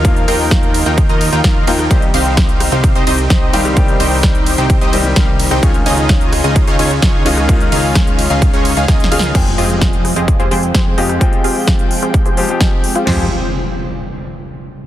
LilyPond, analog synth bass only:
\new Staff \with { instrumentName = "Analog synth bass" } { \clef bass \time 4/4 \key f \minor \tempo 4 = 129 ees,8 ees,4~ ees,16 ees,8 ees,8 ees,16 ees,8 ees,8 | c,8 c,4~ c,16 c,8 c,16 c,8 r8 c,8~ | c,8 c,4~ c,16 c,8 c,8. c,8. c,16 | r8 des,4~ des,16 des,8 des,16 des,8 r8 des,8~ |
des,8 des,4~ des,16 des,8 des,8 des,16 des,8 des,8 | f,8 f,4~ f,16 f,8 f,16 f,8 r8 f,8 | r1 | f,8 r2. r8 | }